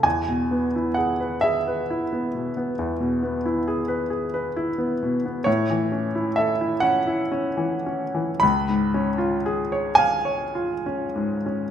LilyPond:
\new Staff \with { instrumentName = "Grand piano" } { \time 12/8 \key e \mixolydian \tempo 4. = 43 << { gis''4 fis''8 e''1~ e''8 | cis''4 e''8 fis''4. b''4. gis''4. | } \\ { e,16 b,16 b16 e'16 gis'16 b'16 gis'16 b'16 e'16 b16 b,16 b16 e,16 b,16 b16 e'16 gis'16 b'16 gis'16 b'16 e'16 b16 b,16 b16 | a,16 e16 cis'16 e'16 a'16 e'16 cis'16 e'16 cis'16 e16 cis'16 e16 cis,16 gis,16 cis'16 eis'16 gis'16 cis''16 eis''16 cis''16 eis'16 cis'16 gis,16 cis'16 | } >> }